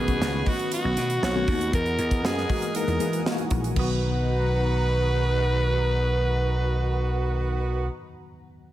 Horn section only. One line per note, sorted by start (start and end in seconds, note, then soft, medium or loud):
0.00 0.95 F#3 medium
0.00 0.95 D#4 medium
0.00 0.95 B4 medium
1.22 1.47 A3 medium
1.22 1.47 F#4 medium
1.22 1.47 C#5 medium
1.73 3.47 B3 medium
1.73 3.47 A#4 medium
1.73 3.47 D#5 medium
3.76 7.87 D#3 medium
3.76 7.87 B3 medium
3.76 7.87 F#4 medium